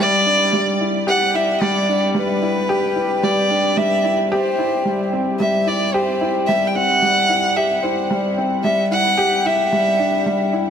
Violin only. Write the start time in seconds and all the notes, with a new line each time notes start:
0.00 D5
1.09 F#5
1.35 E5
1.62 D5
2.16 B4
3.24 D5
3.77 E5
4.31 C5
5.40 E5
5.68 D5
5.94 C5
6.48 E5
6.67 G5
6.75 F#5
7.56 E5
7.83 C5
8.64 E5
8.92 F#5
9.46 E5